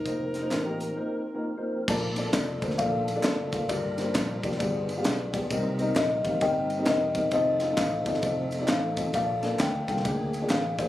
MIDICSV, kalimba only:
0, 0, Header, 1, 2, 480
1, 0, Start_track
1, 0, Key_signature, -2, "major"
1, 0, Tempo, 453858
1, 60, Time_signature, 4, 2, 24, 8
1, 11511, End_track
2, 0, Start_track
2, 0, Title_t, "Kalimba"
2, 0, Program_c, 0, 108
2, 0, Note_on_c, 0, 63, 53
2, 0, Note_on_c, 0, 70, 69
2, 1461, Note_off_c, 0, 63, 0
2, 1461, Note_off_c, 0, 70, 0
2, 2477, Note_on_c, 0, 74, 94
2, 2480, Note_on_c, 0, 65, 67
2, 2485, Note_on_c, 0, 69, 77
2, 2942, Note_off_c, 0, 74, 0
2, 2942, Note_on_c, 0, 77, 108
2, 2946, Note_off_c, 0, 69, 0
2, 2954, Note_on_c, 0, 74, 78
2, 2959, Note_on_c, 0, 69, 82
2, 3392, Note_off_c, 0, 65, 0
2, 3410, Note_off_c, 0, 74, 0
2, 3418, Note_off_c, 0, 69, 0
2, 3422, Note_on_c, 0, 74, 101
2, 3428, Note_on_c, 0, 65, 60
2, 3431, Note_on_c, 0, 69, 72
2, 3440, Note_off_c, 0, 77, 0
2, 3875, Note_off_c, 0, 65, 0
2, 3876, Note_off_c, 0, 69, 0
2, 3889, Note_off_c, 0, 74, 0
2, 3902, Note_on_c, 0, 74, 115
2, 3916, Note_on_c, 0, 70, 81
2, 3918, Note_on_c, 0, 65, 77
2, 4383, Note_on_c, 0, 72, 92
2, 4392, Note_off_c, 0, 65, 0
2, 4400, Note_off_c, 0, 74, 0
2, 4405, Note_on_c, 0, 65, 58
2, 4830, Note_off_c, 0, 70, 0
2, 4832, Note_off_c, 0, 72, 0
2, 4843, Note_off_c, 0, 65, 0
2, 4852, Note_on_c, 0, 74, 92
2, 4866, Note_on_c, 0, 65, 64
2, 4867, Note_on_c, 0, 71, 73
2, 5306, Note_off_c, 0, 74, 0
2, 5330, Note_off_c, 0, 71, 0
2, 5337, Note_on_c, 0, 74, 74
2, 5340, Note_off_c, 0, 65, 0
2, 5343, Note_on_c, 0, 71, 53
2, 5353, Note_on_c, 0, 65, 50
2, 5705, Note_off_c, 0, 74, 0
2, 5791, Note_off_c, 0, 71, 0
2, 5797, Note_off_c, 0, 65, 0
2, 6304, Note_on_c, 0, 70, 68
2, 6309, Note_on_c, 0, 67, 68
2, 6311, Note_on_c, 0, 75, 102
2, 6771, Note_off_c, 0, 70, 0
2, 6774, Note_off_c, 0, 75, 0
2, 6784, Note_on_c, 0, 70, 84
2, 6787, Note_on_c, 0, 75, 90
2, 6791, Note_on_c, 0, 79, 122
2, 7225, Note_off_c, 0, 67, 0
2, 7235, Note_off_c, 0, 79, 0
2, 7250, Note_off_c, 0, 70, 0
2, 7262, Note_on_c, 0, 67, 69
2, 7263, Note_on_c, 0, 70, 75
2, 7264, Note_off_c, 0, 75, 0
2, 7277, Note_on_c, 0, 75, 97
2, 7710, Note_off_c, 0, 67, 0
2, 7711, Note_off_c, 0, 70, 0
2, 7718, Note_off_c, 0, 75, 0
2, 7748, Note_on_c, 0, 72, 84
2, 7754, Note_on_c, 0, 69, 74
2, 7759, Note_on_c, 0, 75, 109
2, 8230, Note_on_c, 0, 77, 96
2, 8246, Note_off_c, 0, 75, 0
2, 8506, Note_off_c, 0, 72, 0
2, 8508, Note_off_c, 0, 69, 0
2, 8519, Note_on_c, 0, 72, 67
2, 8521, Note_on_c, 0, 69, 61
2, 8526, Note_on_c, 0, 75, 71
2, 8538, Note_off_c, 0, 77, 0
2, 9171, Note_off_c, 0, 72, 0
2, 9173, Note_off_c, 0, 69, 0
2, 9184, Note_on_c, 0, 72, 58
2, 9186, Note_on_c, 0, 69, 65
2, 9198, Note_on_c, 0, 77, 94
2, 9205, Note_off_c, 0, 75, 0
2, 9555, Note_off_c, 0, 77, 0
2, 9630, Note_off_c, 0, 72, 0
2, 9631, Note_off_c, 0, 69, 0
2, 9657, Note_on_c, 0, 69, 78
2, 9664, Note_on_c, 0, 74, 81
2, 9679, Note_on_c, 0, 77, 113
2, 10159, Note_on_c, 0, 79, 102
2, 10166, Note_off_c, 0, 77, 0
2, 10436, Note_on_c, 0, 70, 53
2, 10444, Note_off_c, 0, 79, 0
2, 10456, Note_on_c, 0, 79, 86
2, 10578, Note_off_c, 0, 69, 0
2, 10581, Note_off_c, 0, 74, 0
2, 11118, Note_on_c, 0, 77, 93
2, 11129, Note_off_c, 0, 79, 0
2, 11251, Note_off_c, 0, 77, 0
2, 11358, Note_off_c, 0, 70, 0
2, 11402, Note_on_c, 0, 67, 52
2, 11412, Note_on_c, 0, 74, 91
2, 11511, Note_off_c, 0, 67, 0
2, 11511, Note_off_c, 0, 74, 0
2, 11511, End_track
0, 0, End_of_file